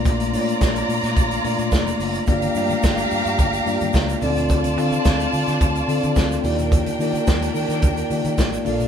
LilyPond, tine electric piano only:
\new Staff \with { instrumentName = "Tine electric piano" } { \time 4/4 \key ees \lydian \tempo 4 = 108 <a bes d' f' d''>8 <a bes d' f' cis'' d''>4. r8 <a bes d' f' d''>4 r8 | <bes d' f' g' d''>8 <a bes d' f' g' d''>4. r8 <bes d' f' g' d''>4 <c' d' ees' f' a' d''>8~ | <c' d' ees' f' a' d''>8 <c' d' f' a' f''>4. r8 <c' d' f' a' d''>4 <bes ees' f' g' d''>8~ | <bes ees' f' g' d''>8 <bes ees' f' g' d''>4. r8 <bes ees' f' g' d''>4 <bes d' f' a' d''>8 | }